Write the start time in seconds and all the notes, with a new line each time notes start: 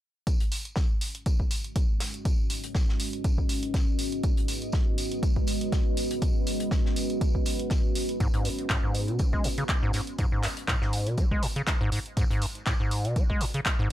0.27 G#3, kick, closed hi-hat, tambourine
0.40 C#4, closed hi-hat
0.52 F#4, open hi-hat, tambourine
0.58 D#5
0.65 closed hi-hat
0.76 kick, snare, tambourine
1.01 open hi-hat, tambourine
1.15 closed hi-hat
1.26 kick, closed hi-hat, tambourine
1.36 B4, kick
1.51 open hi-hat, tambourine
1.64 closed hi-hat
1.76 kick, closed hi-hat, tambourine
2.00 snare, open hi-hat, tambourine
2.14 closed hi-hat
2.25 kick, closed hi-hat, tambourine
2.50 open hi-hat, tambourine
2.64 closed hi-hat
2.75 kick, snare, tambourine
2.89 snare
3.00 open hi-hat, tambourine
3.13 closed hi-hat
3.24 kick, closed hi-hat, tambourine
3.38 kick
3.49 open hi-hat, tambourine
3.63 closed hi-hat
3.74 kick, snare, closed hi-hat, tambourine
3.99 open hi-hat, tambourine
4.12 closed hi-hat
4.23 kick, closed hi-hat, tambourine
4.37 closed hi-hat
4.48 open hi-hat, tambourine
4.62 closed hi-hat
4.72 kick, snare, tambourine
4.98 open hi-hat, tambourine
5.12 closed hi-hat
5.23 kick, closed hi-hat, tambourine
5.36 kick
5.47 open hi-hat, tambourine
5.61 closed hi-hat
5.72 kick, snare, closed hi-hat, tambourine
5.97 open hi-hat, tambourine
6.11 closed hi-hat
6.22 kick, closed hi-hat, tambourine
6.47 open hi-hat, tambourine
6.60 closed hi-hat
6.71 kick, snare, tambourine
6.86 snare
6.96 open hi-hat, tambourine
7.10 closed hi-hat
7.21 kick, closed hi-hat, tambourine
7.35 kick
7.45 open hi-hat, tambourine
7.60 closed hi-hat
7.70 kick, snare, closed hi-hat, tambourine
7.95 open hi-hat, tambourine
8.09 closed hi-hat
8.20 G#2, kick, closed hi-hat, tambourine
8.34 G#2, closed hi-hat
8.45 F#2, open hi-hat, tambourine
8.59 closed hi-hat
8.69 A2, kick, snare, clap, tambourine
8.83 G#2
8.94 open hi-hat, tambourine
9.08 B2, closed hi-hat
9.19 G#3, kick, closed hi-hat, tambourine
9.33 G#3, kick
9.44 F#2, open hi-hat, tambourine
9.58 C#3, closed hi-hat
9.69 kick, clap, closed hi-hat, tambourine
9.83 G#2
9.93 G#2, snare, open hi-hat, tambourine
10.07 closed hi-hat
10.18 G#2, kick, closed hi-hat, tambourine
10.32 G#2
10.43 F#2, clap, open hi-hat, tambourine
10.57 closed hi-hat
10.68 A2, kick, snare, clap, tambourine
10.82 G#2, snare
10.93 open hi-hat, tambourine
11.07 B2, closed hi-hat
11.17 G#3, kick, closed hi-hat, tambourine
11.31 G#3, kick
11.42 F#2, open hi-hat, tambourine
11.56 C#3, closed hi-hat
11.67 kick, snare, clap, closed hi-hat, tambourine
11.81 G#2
11.92 G#2, open hi-hat, tambourine
12.06 closed hi-hat
12.17 G#2, kick, closed hi-hat, tambourine
12.30 G#2, closed hi-hat
12.42 F#2, open hi-hat, tambourine
12.55 closed hi-hat
12.66 A2, kick, snare, clap, tambourine
12.80 G#2
12.91 open hi-hat, tambourine
13.05 B2, closed hi-hat
13.16 G#3, kick, closed hi-hat, tambourine
13.30 G#3, kick
13.41 F#2, open hi-hat, tambourine
13.54 C#3, closed hi-hat
13.65 kick, snare, clap, closed hi-hat, tambourine
13.79 G#2